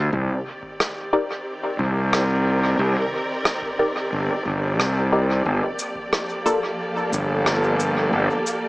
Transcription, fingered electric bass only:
0.13 0.28 C2 medium
1.79 2.76 C2 medium
2.79 2.94 C2 loud
4.13 4.27 G1 medium
4.46 4.79 G1 medium
4.79 5.43 C2 medium
5.46 5.61 G1 medium
7.12 8.09 G1 medium
8.13 8.28 G1 medium

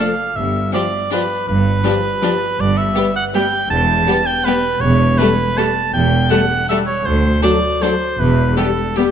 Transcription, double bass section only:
0.37 0.67 G1 medium
1.48 1.78 G1 medium
2.59 2.90 G1 medium
3.70 4.01 E1 medium
4.82 5.13 E1 medium
5.94 6.25 E1 medium
7.06 7.37 D2 medium
8.19 8.50 E1 medium

